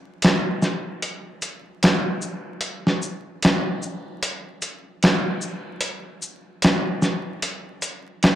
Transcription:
0.22 finger snap medium
0.22 snare loud
0.22 closed hi-hat medium
0.62 snare soft
0.62 shaker soft
1.02 closed hi-hat medium
1.42 closed hi-hat soft
1.42 shaker soft
1.83 finger snap loud
1.83 snare loud
1.83 closed hi-hat medium
2.22 shaker soft
2.61 closed hi-hat medium
2.87 snare soft
3.02 shaker soft
3.43 finger snap medium
3.43 snare loud
3.43 closed hi-hat medium
3.82 shaker soft
4.23 closed hi-hat medium
4.62 closed hi-hat soft
4.62 shaker medium
5.03 finger snap loud
5.03 snare loud
5.03 closed hi-hat medium
5.41 shaker soft
5.81 closed hi-hat medium
6.22 shaker medium
6.62 finger snap medium
6.62 snare loud
6.62 closed hi-hat medium
7.02 snare soft
7.02 shaker soft
7.42 closed hi-hat medium
7.82 closed hi-hat soft
7.82 shaker soft
8.23 finger snap loud
8.23 snare loud
8.23 closed hi-hat medium

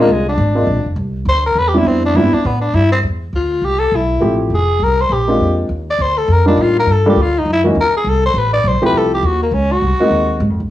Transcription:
0.01 0.13 A#3 medium
0.08 0.37 C2 medium
0.08 0.28 G#3 medium
0.28 0.94 D4 medium
0.37 0.66 G#1 medium
0.55 0.66 G#3 medium
0.55 0.66 A#3 soft
0.55 0.66 C4 medium
0.55 0.66 D4 medium
0.55 0.66 F4 medium
0.67 0.77 A#1 medium
0.77 0.85 G#1 medium
0.86 0.95 F1 medium
0.96 1.25 C2 medium
1.25 1.54 D2 medium
1.25 1.44 C5 loud
1.46 1.60 A#4 loud
1.55 1.84 E2 medium
1.55 1.70 B4 loud
1.68 1.79 G4 medium
1.74 2.12 G3 medium
1.74 2.12 B3 medium
1.74 2.13 C4 medium
1.74 2.13 D4 medium
1.74 2.13 E4 medium
1.78 1.89 E4 medium
1.84 2.13 F2 medium
1.84 2.04 C4 medium
2.05 2.17 D4 loud
2.14 2.31 G2 medium
2.14 2.32 G3 medium
2.14 2.32 B3 medium
2.14 2.32 C4 medium
2.14 2.32 D4 medium
2.14 2.35 E4 medium
2.14 2.32 E4 medium
2.32 2.48 D4 medium
2.32 muted upright bass stroke soft
2.45 2.73 A2 medium
2.45 2.60 B3 medium
2.61 2.76 D4 medium
2.73 3.02 G2 medium
2.73 2.91 E4 loud
2.92 2.99 C4 loud
3.03 3.31 E2 medium
3.33 3.61 D2 medium
3.33 3.66 F4 medium
3.61 3.90 C2 medium
3.61 3.80 G4 medium
3.79 3.97 A4 medium
3.92 4.20 B1 medium
3.96 4.41 E4 medium
4.20 4.49 A1 medium
4.20 4.51 F3 medium
4.20 4.50 A3 medium
4.20 4.50 C4 soft
4.20 4.51 E4 soft
4.20 4.51 G4 medium
4.50 4.79 F1 medium
4.54 4.85 G#4 medium
4.79 5.08 C2 medium
4.83 5.02 A#4 loud
5.01 5.14 C5 loud
5.09 5.38 A#1 medium
5.09 5.59 G4 medium
5.27 5.66 G#3 medium
5.27 5.66 A#3 medium
5.27 5.67 C4 medium
5.27 5.67 D4 soft
5.27 5.67 F4 medium
5.40 5.68 F2 medium
5.69 5.98 D#2 medium
5.90 6.03 D5 loud
5.99 6.27 D2 medium
5.99 6.19 C5 loud
6.18 6.34 A4 medium
6.28 6.56 F2 medium
6.32 6.47 A#4 loud
6.46 6.84 G3 medium
6.46 6.85 A#3 medium
6.46 6.85 D4 medium
6.46 6.63 D4 medium
6.46 6.85 D#4 medium
6.46 6.85 F4 medium
6.57 6.85 A2 medium
6.62 6.77 F4 medium
6.79 6.93 A#4 loud
6.86 7.15 G2 medium
6.92 7.07 A4 medium
7.06 7.16 G3 medium
7.06 7.16 A#3 medium
7.06 7.16 D4 medium
7.06 7.16 F4 medium
7.06 7.24 G4 medium
7.06 7.16 A4 medium
7.16 7.45 D2 medium
7.22 7.40 F4 medium
7.38 7.48 D#4 medium
7.45 7.74 F#2 medium
7.53 7.61 E4 medium
7.64 7.74 E3 medium
7.64 7.74 A#3 medium
7.64 7.75 C#4 medium
7.64 7.75 D#4 medium
7.64 7.75 F#4 medium
7.75 7.92 D#2 medium
7.81 7.95 A#4 medium
7.93 8.11 G#4 medium
7.93 muted upright bass stroke soft
8.04 8.33 C2 medium
8.09 8.25 A4 medium
8.26 8.40 C5 loud
8.34 8.63 A1 medium
8.38 8.53 B4 loud
8.53 8.70 D5 loud
8.64 8.81 B1 medium
8.64 8.84 C5 medium
8.82 9.21 F3 medium
8.82 9.21 A3 medium
8.82 9.21 C4 medium
8.82 9.21 E4 medium
8.82 9.21 G4 medium
8.82 muted upright bass stroke soft
8.86 8.99 B4 loud
8.93 9.22 C2 medium
8.98 9.13 A4 medium
9.14 9.28 G4 medium
9.23 9.51 D#2 medium
9.23 9.42 F#4 medium
9.43 9.55 A#3 medium
9.51 9.80 C#2 medium
9.51 9.74 C#4 medium
9.72 10.42 F#4 medium
9.82 9.99 C2 medium
9.99 10.39 G#3 medium
9.99 10.39 A#3 medium
9.99 10.39 C4 medium
9.99 10.39 D#4 medium
9.99 10.39 F#4 medium
9.99 muted upright bass stroke soft
10.11 10.39 D#2 medium
10.40 10.50 G#2 medium
10.50 10.59 F2 medium
10.60 10.69 C#2 medium

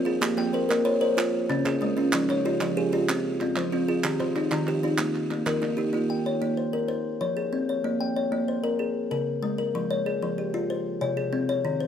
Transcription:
0.00 0.22 C4 medium
0.05 0.38 F4 medium
0.05 0.38 G#4 medium
0.21 0.54 A#3 medium
0.21 0.54 G4 medium
0.21 clap medium
0.37 0.69 A#3 medium
0.37 0.86 G5 medium
0.37 clap soft
0.53 1.00 A#4 medium
0.53 1.00 C5 medium
0.69 1.02 A#3 medium
0.69 1.17 A#4 medium
0.69 clap soft
0.85 1.34 C5 medium
0.85 1.17 C#5 medium
1.01 1.17 A#4 medium
1.01 1.49 C5 medium
1.17 1.33 F4 medium
1.17 clap medium
1.49 1.81 C#3 medium
1.49 1.97 C#4 medium
1.49 clap soft
1.65 1.97 C#3 medium
1.65 2.13 G#4 medium
1.65 clap soft
1.81 2.13 G#3 medium
1.81 1.95 C#4 medium
1.97 2.29 C#4 medium
1.97 2.29 F4 medium
2.12 2.45 F3 medium
2.12 2.45 D#4 medium
2.12 clap medium
2.29 2.61 F3 medium
2.29 2.77 C#5 medium
2.29 clap soft
2.45 2.92 F4 medium
2.45 2.91 G4 medium
2.61 2.93 F3 medium
2.61 3.09 F4 medium
2.61 clap soft
2.77 3.25 G4 medium
2.77 3.09 G#4 medium
2.93 3.25 F4 medium
2.93 3.40 G4 medium
3.09 3.41 C4 medium
3.09 clap medium
3.41 3.72 C4 medium
3.41 3.88 F4 medium
3.41 clap soft
3.56 3.88 F3 medium
3.56 4.04 C5 medium
3.56 clap soft
3.72 4.04 C4 medium
3.72 3.87 F4 medium
3.88 4.20 F4 medium
3.88 4.20 G#4 medium
4.04 4.36 D#3 medium
4.04 4.36 G4 medium
4.04 clap medium
4.20 4.52 D#3 medium
4.20 4.67 C5 medium
4.20 clap soft
4.36 4.82 D#4 medium
4.36 4.83 F4 medium
4.36 clap soft
4.51 4.83 D#3 medium
4.51 4.99 D#4 medium
4.51 clap soft
4.67 4.99 G4 medium
4.67 clap soft
4.83 5.15 D#4 medium
4.83 5.31 F4 medium
4.98 5.31 A#3 medium
4.98 clap medium
5.15 clap soft
5.31 5.61 A#3 medium
5.31 clap soft
5.46 5.78 D#3 medium
5.46 5.94 A#4 medium
5.46 clap soft
5.62 5.92 A#3 medium
5.62 5.77 D#4 medium
5.62 clap soft
5.77 6.10 D#4 medium
5.77 6.09 G4 medium
5.93 6.25 A#3 medium
5.93 6.26 F4 medium
6.10 6.58 G5 medium
6.26 6.74 C#5 medium
6.42 6.74 A#3 medium
6.57 6.87 C5 medium
6.73 7.05 A#4 medium
6.88 7.37 C5 medium
7.21 7.53 F3 medium
7.21 7.68 C#5 medium
7.37 7.85 G#4 medium
7.53 7.85 C4 medium
7.69 8.01 C#5 medium
7.84 8.16 A#3 medium
8.00 8.48 G5 medium
8.16 8.64 C#5 medium
8.32 8.64 A#3 medium
8.48 8.96 C5 medium
8.64 8.96 A#4 medium
8.79 9.27 G#4 medium
9.11 9.43 C#3 medium
9.11 9.57 A#4 medium
9.43 9.75 G#3 medium
9.58 9.91 A#4 medium
9.75 10.07 F3 medium
9.90 10.38 C#5 medium
10.06 10.54 G#4 medium
10.22 10.54 F3 medium
10.38 10.86 G4 medium
10.54 11.02 F4 medium
10.70 11.18 C5 medium
11.01 11.33 C3 medium
11.01 11.48 C#5 medium
11.17 11.65 G#4 medium
11.33 11.65 C4 medium
11.49 11.81 C#5 medium
11.65 11.87 D#3 medium
11.80 11.87 C5 medium

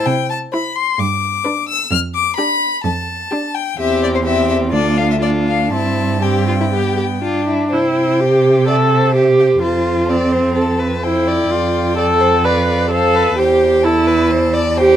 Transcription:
0.06 0.43 C3 medium
0.06 0.29 G5 medium
0.30 0.38 A5 medium
0.52 0.87 E4 soft
0.52 0.87 C5 soft
0.52 0.77 B5 medium
0.76 1.01 C6 medium
0.99 1.35 G2 medium
0.99 1.68 D6 medium
1.45 1.80 D4 soft
1.45 1.80 B4 soft
1.69 1.91 E6 medium
1.91 2.28 F2 medium
1.91 1.99 F6 medium
2.15 2.36 D6 medium
2.36 2.73 D4 medium
2.36 2.72 G4 soft
2.36 2.83 B5 medium
2.84 3.22 F2 medium
2.84 3.56 A5 medium
3.31 3.67 D4 medium
3.31 3.67 G4 soft
3.55 3.79 G5 medium
3.79 4.74 E2 soft
3.79 4.23 C4 soft
3.79 4.22 G4 soft
3.79 4.02 E5 medium
4.03 4.08 D5 medium
4.15 4.19 C5 medium
4.25 4.74 C4 medium
4.25 4.72 G4 soft
4.25 4.49 E5 medium
4.49 4.57 E5 medium
4.73 5.72 D2 soft
4.73 5.20 D4 soft
4.73 5.20 F4 soft
4.73 4.99 D5 medium
4.98 5.09 F5 medium
5.11 5.15 E5 medium
5.21 5.73 D4 soft
5.21 5.70 F4 soft
5.21 5.30 D5 medium
5.47 5.72 F5 medium
5.70 7.51 G2 soft
5.70 6.22 C4 soft
5.70 6.21 E4 soft
5.70 6.24 A5 medium
6.22 6.74 C4 soft
6.22 6.46 G4 soft
6.22 7.48 G5 soft
6.48 6.53 F4 soft
6.61 6.66 E4 soft
6.72 7.23 B3 soft
6.72 6.96 G4 soft
6.97 7.05 G4 soft
7.22 7.74 D4 medium
7.22 7.47 F4 soft
7.47 7.70 E4 soft
7.71 9.58 C3 soft
7.71 8.22 E4 soft
7.71 7.94 C5 soft
7.71 8.70 G5 soft
7.95 8.66 C5 soft
8.20 8.67 G4 medium
8.67 9.14 A4 medium
8.67 8.75 D5 soft
8.67 9.15 E5 soft
8.91 9.61 C5 soft
9.15 9.61 G4 medium
9.15 9.24 E5 soft
9.40 9.48 G5 soft
9.62 11.47 F2 soft
9.62 10.11 F4 medium
9.62 10.10 C5 soft
9.62 10.08 A5 soft
10.09 10.80 C4 medium
10.09 10.33 D5 soft
10.09 10.55 A5 soft
10.32 10.57 C5 soft
10.55 10.81 A4 soft
10.55 11.05 A5 soft
10.79 11.05 B4 soft
11.03 11.53 E4 medium
11.03 11.29 C5 soft
11.03 12.47 G5 soft
11.27 11.97 D5 soft
11.51 13.34 F2 medium
11.51 11.97 F4 medium
11.98 12.46 A4 medium
11.98 12.06 D5 soft
12.20 12.28 C5 soft
12.45 12.90 B4 medium
12.45 12.67 D5 medium
12.45 12.90 F5 soft
12.68 12.92 D5 soft
12.90 13.37 A4 medium
12.90 13.17 C5 soft
12.90 13.37 F5 soft
13.15 13.40 B4 medium
13.38 14.97 E2 medium
13.38 13.86 G4 medium
13.38 13.86 C5 medium
13.38 13.85 G5 soft
13.84 14.54 E4 medium
13.84 14.09 A4 medium
13.84 14.79 A5 medium
14.07 14.32 B4 medium
14.31 14.55 C5 medium
14.54 14.79 D5 medium
14.77 14.97 G4 medium
14.77 14.97 C5 medium
14.77 14.97 G5 soft

